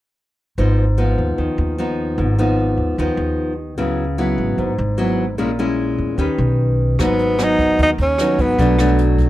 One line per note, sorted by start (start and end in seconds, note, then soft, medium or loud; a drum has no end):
0.58 1.14 G#1 medium
0.58 1.36 G#2 soft
0.58 0.84 F3 soft
0.58 0.84 B3 soft
0.58 0.84 D#4 soft
0.98 1.75 F3 soft
0.98 1.75 B3 soft
0.98 1.75 D#4 soft
1.18 1.37 D#2 medium
1.38 1.47 D#2 medium
1.38 2.16 D#3 soft
1.58 2.19 D#2 medium
1.78 2.35 F3 soft
1.78 2.36 B3 soft
1.78 2.36 D#4 soft
2.18 2.74 G#1 medium
2.18 2.96 G#2 soft
2.38 2.95 F3 medium
2.38 2.95 B3 medium
2.38 2.96 D#4 medium
2.77 2.96 D#2 medium
2.98 3.08 D#2 medium
2.98 3.77 D#3 soft
2.98 3.52 F3 soft
2.98 3.52 B3 soft
2.98 3.53 D#4 medium
3.17 3.77 D#2 medium
3.77 4.34 C#2 medium
3.77 4.56 C#3 medium
3.77 4.04 F#3 soft
3.77 4.04 B3 soft
3.77 4.04 E4 medium
4.18 4.72 F#3 medium
4.18 4.72 B3 soft
4.18 4.72 E4 soft
4.38 4.57 G#1 medium
4.58 4.67 G#1 medium
4.58 5.37 G#2 soft
4.78 5.39 G#1 medium
4.98 5.24 F#3 medium
4.98 5.24 B3 soft
4.98 5.24 E4 soft
5.38 5.95 A#1 medium
5.38 6.16 A#2 soft
5.38 5.50 G#3 medium
5.38 5.50 C#4 soft
5.38 5.51 E4 medium
5.59 6.16 G#3 soft
5.59 6.16 C#4 medium
5.59 6.16 E4 medium
5.98 6.17 E2 medium
6.18 6.27 D#2 medium
6.18 6.96 D#3 soft
6.18 6.95 C#4 medium
6.18 6.95 G4 soft
6.18 6.96 B4 soft
6.38 6.95 B1 medium
6.99 7.75 G#1 medium
6.99 7.77 G#2 soft
6.99 7.36 F#3 soft
6.99 7.36 B3 soft
6.99 7.36 D#4 medium
6.99 kick medium
6.99 cross-stick medium
6.99 closed hi-hat soft
7.04 7.45 B3 medium
7.19 closed hi-hat soft
7.39 7.93 F#3 soft
7.39 7.93 B3 medium
7.39 7.93 D#4 medium
7.39 cross-stick soft
7.39 closed hi-hat soft
7.43 7.81 D#4 medium
7.59 kick soft
7.59 closed hi-hat soft
7.79 7.97 D#2 medium
7.79 8.57 D#3 soft
7.79 kick soft
7.79 closed hi-hat soft
7.83 7.91 D#4 medium
7.98 8.36 D#2 medium
7.98 8.43 C#4 medium
7.98 closed hi-hat soft
8.18 8.58 F#3 soft
8.18 8.58 B3 medium
8.18 8.58 D#4 medium
8.18 cross-stick medium
8.18 closed hi-hat soft
8.38 8.57 G#1 medium
8.38 9.20 B3 medium
8.38 kick soft
8.38 closed hi-hat soft
8.58 9.29 B1 medium
8.58 9.29 B2 soft
8.58 8.76 F#3 medium
8.58 8.76 A3 soft
8.58 8.76 D4 medium
8.58 kick medium
8.58 closed hi-hat soft
8.79 9.29 F#3 medium
8.79 9.29 A3 medium
8.79 9.29 D4 medium
8.79 cross-stick medium
8.79 closed hi-hat soft
8.98 closed hi-hat soft
9.18 kick soft
9.18 closed hi-hat soft